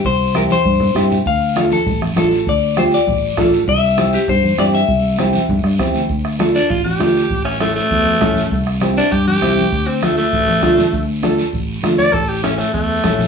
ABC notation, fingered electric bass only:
X:1
M:4/4
L:1/8
Q:1/4=198
K:Dm
V:1 name="Fingered electric bass" clef=bass
C,,4 G,,2 G,,2 | D,,4 A,,,2 A,,,2 | D,,4 A,,,2 A,,,2 | C,,4 G,,2 G,,2 |
C,,4 G,, G,, E,, D,, | D,,4 A,,,2 D,,2 | A,,,4 E,,2 A,,,2 | C,,4 G,,2 C,,2 |
D,,4 A,,,2 D,,2 | D,,4 A,,,2 D,,2 | A,,,4 E,,2 B,,,2 |]